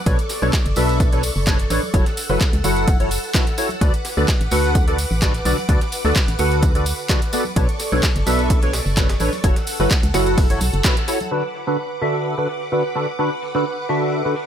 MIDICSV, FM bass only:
0, 0, Header, 1, 2, 480
1, 0, Start_track
1, 0, Key_signature, 2, "major"
1, 0, Tempo, 468750
1, 66, Time_signature, 4, 2, 24, 8
1, 14810, End_track
2, 0, Start_track
2, 0, Title_t, "FM bass"
2, 0, Program_c, 0, 39
2, 65, Note_on_c, 0, 35, 102
2, 159, Note_off_c, 0, 35, 0
2, 433, Note_on_c, 0, 35, 93
2, 515, Note_off_c, 0, 35, 0
2, 672, Note_on_c, 0, 30, 102
2, 755, Note_off_c, 0, 30, 0
2, 785, Note_on_c, 0, 35, 87
2, 1338, Note_off_c, 0, 35, 0
2, 1392, Note_on_c, 0, 30, 84
2, 1697, Note_off_c, 0, 30, 0
2, 1745, Note_on_c, 0, 33, 84
2, 1839, Note_off_c, 0, 33, 0
2, 1985, Note_on_c, 0, 30, 98
2, 2079, Note_off_c, 0, 30, 0
2, 2352, Note_on_c, 0, 30, 92
2, 2435, Note_off_c, 0, 30, 0
2, 2591, Note_on_c, 0, 37, 107
2, 2674, Note_off_c, 0, 37, 0
2, 2703, Note_on_c, 0, 30, 85
2, 3257, Note_off_c, 0, 30, 0
2, 3905, Note_on_c, 0, 38, 104
2, 3999, Note_off_c, 0, 38, 0
2, 4273, Note_on_c, 0, 38, 88
2, 4355, Note_off_c, 0, 38, 0
2, 4512, Note_on_c, 0, 33, 100
2, 4594, Note_off_c, 0, 33, 0
2, 4624, Note_on_c, 0, 38, 88
2, 5178, Note_off_c, 0, 38, 0
2, 5232, Note_on_c, 0, 33, 79
2, 5537, Note_off_c, 0, 33, 0
2, 5584, Note_on_c, 0, 35, 79
2, 5678, Note_off_c, 0, 35, 0
2, 5824, Note_on_c, 0, 38, 100
2, 5919, Note_off_c, 0, 38, 0
2, 6192, Note_on_c, 0, 38, 90
2, 6274, Note_off_c, 0, 38, 0
2, 6433, Note_on_c, 0, 33, 103
2, 6515, Note_off_c, 0, 33, 0
2, 6545, Note_on_c, 0, 38, 86
2, 7098, Note_off_c, 0, 38, 0
2, 7745, Note_on_c, 0, 35, 99
2, 7839, Note_off_c, 0, 35, 0
2, 8113, Note_on_c, 0, 35, 90
2, 8195, Note_off_c, 0, 35, 0
2, 8354, Note_on_c, 0, 30, 104
2, 8435, Note_off_c, 0, 30, 0
2, 8465, Note_on_c, 0, 35, 84
2, 9018, Note_off_c, 0, 35, 0
2, 9073, Note_on_c, 0, 30, 81
2, 9377, Note_off_c, 0, 30, 0
2, 9425, Note_on_c, 0, 33, 85
2, 9519, Note_off_c, 0, 33, 0
2, 9666, Note_on_c, 0, 30, 102
2, 9759, Note_off_c, 0, 30, 0
2, 10034, Note_on_c, 0, 30, 89
2, 10115, Note_off_c, 0, 30, 0
2, 10272, Note_on_c, 0, 37, 106
2, 10355, Note_off_c, 0, 37, 0
2, 10384, Note_on_c, 0, 30, 86
2, 10859, Note_off_c, 0, 30, 0
2, 10865, Note_on_c, 0, 35, 95
2, 10959, Note_off_c, 0, 35, 0
2, 10994, Note_on_c, 0, 30, 88
2, 11075, Note_off_c, 0, 30, 0
2, 14810, End_track
0, 0, End_of_file